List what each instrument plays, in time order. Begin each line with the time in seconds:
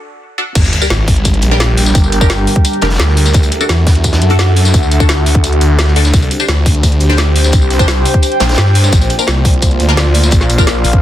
0.38 synth stab D4 F#4 A4
0.55 detuned saw bass G1, analog synth pad G3 D4 G4 A#4, kick, closed hi-hat, crash, tambourine, sub drop
0.64 closed hi-hat, tambourine
0.73 closed hi-hat
0.82 synth stab D4 G4 A#4, tambourine
0.90 detuned saw bass G#1, snare, closed hi-hat, tambourine
1.02 ambient pad G4
1.08 kick, closed hi-hat, open hi-hat, tambourine
1.16 closed hi-hat
1.21 ambient pad G5, kick, closed hi-hat, tambourine
1.30 ambient pad A#4, closed hi-hat
1.42 detuned saw bass A#1, closed hi-hat
1.51 synth stab D4 G4 A#4, snare
1.60 snare, closed hi-hat, tambourine
1.77 closed hi-hat, open hi-hat
1.86 snare, tambourine
1.95 detuned saw bass G1, kick, closed hi-hat, tambourine
2.04 tambourine
2.12 detuned saw bass G1, closed hi-hat
2.21 synth stab D4 G4 A#4, kick, tambourine
2.30 snare, closed hi-hat, tambourine
2.47 closed hi-hat, open hi-hat, tambourine
2.56 kick, closed hi-hat
2.65 closed hi-hat, tambourine
2.73 closed hi-hat
2.82 detuned saw bass F1, synth stab D4 G4 A#4, snare, closed hi-hat
2.90 snare, closed hi-hat
2.94 snare, closed hi-hat
2.99 detuned saw bass D2, snare, closed hi-hat, tambourine
3.08 snare
3.17 closed hi-hat, open hi-hat
3.25 snare, closed hi-hat, tambourine
3.33 detuned saw bass D2, analog synth pad D4 A4 E5 F#5, kick, closed hi-hat, tambourine
3.43 ambient pad F#4, closed hi-hat, tambourine
3.52 closed hi-hat
3.57 synth stab D4 F#4 A4, ambient pad A4, tambourine
3.69 detuned saw bass E2, snare, closed hi-hat, tambourine
3.87 kick, snare, closed hi-hat, open hi-hat, tambourine
3.95 closed hi-hat
4.04 kick, closed hi-hat, tambourine
4.13 snare, closed hi-hat
4.22 detuned saw bass F#2, closed hi-hat
4.30 synth stab D4 F#4 A4, closed hi-hat
4.39 snare, closed hi-hat, tambourine
4.51 ambient pad F#5
4.57 closed hi-hat, open hi-hat
4.65 snare, closed hi-hat, tambourine
4.74 detuned saw bass D2, kick, closed hi-hat, tambourine
4.83 tambourine
4.91 detuned saw bass D2, closed hi-hat, tambourine
5.00 synth stab D4 F#4 A4, kick, tambourine
5.09 snare, closed hi-hat, tambourine
5.26 detuned saw bass D2, closed hi-hat, open hi-hat, tambourine
5.35 kick
5.44 closed hi-hat, tambourine
5.53 closed hi-hat
5.61 detuned saw bass D2, closed hi-hat
5.79 snare, closed hi-hat, tambourine
5.87 snare
5.96 detuned saw bass D2, synth stab D4 F#4 A4, closed hi-hat, open hi-hat
6.05 snare, closed hi-hat, tambourine
6.14 detuned saw bass C2, analog synth pad G4 C5, kick, closed hi-hat, tambourine
6.22 closed hi-hat, tambourine
6.31 closed hi-hat
6.39 synth stab D4 G4 C5, ambient pad G4, tambourine
6.48 detuned saw bass D2, snare, closed hi-hat, tambourine
6.66 kick, closed hi-hat, open hi-hat, tambourine
6.75 closed hi-hat
6.83 kick, closed hi-hat, tambourine
6.88 ambient pad C5
6.92 closed hi-hat
7.00 detuned saw bass D2, closed hi-hat
7.09 synth stab D4 G4 C5, snare
7.17 snare, closed hi-hat, tambourine
7.36 ambient pad G5, closed hi-hat, open hi-hat
7.44 snare, closed hi-hat, tambourine
7.52 detuned saw bass C2, kick, closed hi-hat, tambourine
7.62 tambourine
7.70 detuned saw bass C2, closed hi-hat
7.79 synth stab D4 G4 C5, kick, tambourine
7.88 snare, closed hi-hat, tambourine
8.05 closed hi-hat, open hi-hat, tambourine
8.14 kick, closed hi-hat
8.22 closed hi-hat, tambourine
8.32 closed hi-hat
8.40 detuned saw bass A#1, synth stab D4 G4 C5, snare, closed hi-hat
8.49 snare, closed hi-hat
8.53 snare, closed hi-hat
8.58 detuned saw bass G2, snare, closed hi-hat, tambourine
8.66 snare
8.75 closed hi-hat, open hi-hat
8.83 snare, closed hi-hat, tambourine
8.92 detuned saw bass A#1, analog synth pad A#3 F4 D5, kick, closed hi-hat, tambourine
9.01 closed hi-hat, tambourine
9.10 ambient pad F4, closed hi-hat
9.19 synth stab D4 F4 A#4, tambourine
9.27 detuned saw bass C2, snare, closed hi-hat
9.37 ambient pad A#4
9.45 kick, closed hi-hat, open hi-hat, tambourine
9.54 closed hi-hat
9.62 kick, closed hi-hat, tambourine
9.71 closed hi-hat
9.80 detuned saw bass D2, closed hi-hat
9.87 synth stab D4 F4 A#4, ambient pad F5, snare
9.97 snare, closed hi-hat, tambourine
10.14 closed hi-hat, open hi-hat
10.23 snare, closed hi-hat, tambourine
10.31 detuned saw bass A#1, kick, closed hi-hat, tambourine
10.41 snare, tambourine
10.50 detuned saw bass A#1, closed hi-hat, tambourine
10.58 synth stab D4 F4 A#4, kick, tambourine
10.67 snare, closed hi-hat, tambourine
10.84 detuned saw bass A#1, closed hi-hat, open hi-hat, tambourine
10.93 kick, closed hi-hat